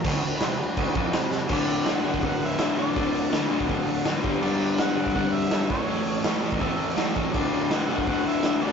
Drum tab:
CC |x-x-x-x-x-x-x---|x---------------|----------------|x---------------|
HH |----------------|--o-o-o-o-o-o-o-|o-o-o-o-o-o-o-o-|--o-o-o-o-o-o-o-|
SD |----o-------o-o-|----o-------o---|----o------oo---|----o------oo---|
BD |o-------o-o-----|o------oo-------|o------oo-----o-|-------oo-----o-|

CC |----------------|x---------------|
HH |o-o-o-o-o-o-o-o-|--o-o-o-o-o---o-|
SD |----o------oo---|----o-------o---|
BD |-------oo-----o-|o------oo-------|